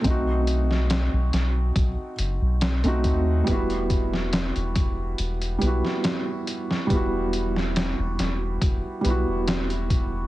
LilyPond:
<<
  \new Staff \with { instrumentName = "Felt piano" } { \time 4/4 \key e \minor \tempo 4 = 70 <a c' dis' fis'>2~ <a c' dis' fis'>8 r8. <a c' dis' fis'>8. | <g b e' fis'>2~ <g b e' fis'>8 <g b e' fis'>4. | <g b e' fis'>2~ <g b e' fis'>8 <g b e' fis'>4. | }
  \new Staff \with { instrumentName = "Sub bass" } { \clef bass \time 4/4 \key e \minor b,,4~ b,,16 b,,16 b,,8 b,,16 r16 fis,,16 b,,8 b,,16 dis,8 | e,,4~ e,,16 e,,16 e,,8 e,,8 b,,16 r4 r16 | e,,4~ e,,16 e,,16 e,,8 e,,16 r16 b,,16 e,,4~ e,,16 | }
  \new DrumStaff \with { instrumentName = "Drums" } \drummode { \time 4/4 <hh bd>8 hh16 sn16 <hh sn>8 <hh sn>8 <hh bd>8 hh8 <hh sn>16 hh16 <hh bd>8 | <hh bd>16 hh16 <hh bd>16 sn16 <hh sn>16 hh16 <hh bd>8 hh16 hh16 hh16 sn16 <hh sn>8 hh16 sn16 | <hh bd>8 hh16 sn16 <hh sn>8 <hh sn>8 <hh bd>8 hh8 <hh sn>16 hh16 <hh bd>8 | }
>>